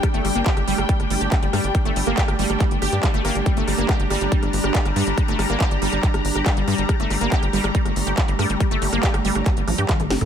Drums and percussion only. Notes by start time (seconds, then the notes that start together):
0.03 kick, cross-stick, closed hi-hat
0.14 closed hi-hat
0.25 cross-stick, open hi-hat
0.35 closed hi-hat
0.46 kick, clap, closed hi-hat
0.57 cross-stick, closed hi-hat
0.68 open hi-hat
0.78 cross-stick, closed hi-hat
0.89 kick, closed hi-hat
1.00 cross-stick, closed hi-hat
1.10 open hi-hat
1.21 closed hi-hat
1.32 kick, cross-stick, clap, closed hi-hat
1.43 closed hi-hat
1.53 cross-stick, open hi-hat
1.64 closed hi-hat
1.75 kick, cross-stick, closed hi-hat
1.85 closed hi-hat
1.96 open hi-hat
2.07 cross-stick
2.18 kick, clap, closed hi-hat
2.28 cross-stick, closed hi-hat
2.39 open hi-hat
2.50 cross-stick, closed hi-hat
2.60 kick, clap, closed hi-hat
2.71 closed hi-hat
2.82 cross-stick, open hi-hat
2.93 closed hi-hat
3.03 kick, cross-stick, clap, closed hi-hat
3.14 closed hi-hat
3.25 cross-stick, open hi-hat
3.35 closed hi-hat
3.46 kick, closed hi-hat
3.57 closed hi-hat
3.68 cross-stick, open hi-hat
3.78 closed hi-hat
3.89 kick, cross-stick, clap, closed hi-hat
4.00 closed hi-hat
4.10 cross-stick, open hi-hat
4.21 closed hi-hat
4.32 kick, closed hi-hat
4.43 cross-stick, closed hi-hat
4.53 open hi-hat
4.64 cross-stick, closed hi-hat
4.75 kick, clap, closed hi-hat
4.85 cross-stick, closed hi-hat
4.96 open hi-hat
5.07 closed hi-hat
5.18 kick, cross-stick, closed hi-hat
5.28 closed hi-hat
5.39 cross-stick, open hi-hat
5.50 closed hi-hat
5.60 kick, cross-stick, clap, closed hi-hat
5.71 closed hi-hat
5.82 open hi-hat
5.93 cross-stick, closed hi-hat
6.03 kick, clap, closed hi-hat
6.14 cross-stick, closed hi-hat
6.25 open hi-hat
6.35 cross-stick, closed hi-hat
6.46 kick, clap, closed hi-hat
6.57 closed hi-hat
6.68 cross-stick, open hi-hat
6.78 closed hi-hat
6.89 kick, cross-stick, closed hi-hat
7.00 closed hi-hat
7.10 cross-stick, open hi-hat
7.21 closed hi-hat
7.32 kick, clap, closed hi-hat
7.43 cross-stick, closed hi-hat
7.53 open hi-hat
7.64 cross-stick, closed hi-hat
7.75 kick, closed hi-hat
7.85 cross-stick, closed hi-hat
7.96 open hi-hat
8.07 closed hi-hat
8.18 kick, cross-stick, clap, closed hi-hat
8.28 closed hi-hat
8.39 cross-stick, open hi-hat
8.50 closed hi-hat
8.60 kick, cross-stick, closed hi-hat
8.71 closed hi-hat
8.82 open hi-hat
8.93 cross-stick, closed hi-hat
9.03 kick, clap, closed hi-hat
9.14 cross-stick, closed hi-hat
9.25 open hi-hat
9.35 cross-stick, closed hi-hat
9.46 kick, clap, closed hi-hat
9.57 closed hi-hat
9.68 cross-stick, open hi-hat
9.78 closed hi-hat
9.89 kick, cross-stick, clap, closed hi-hat, high tom
10.00 closed hi-hat, high tom
10.10 cross-stick, snare, open hi-hat
10.21 closed hi-hat, mid tom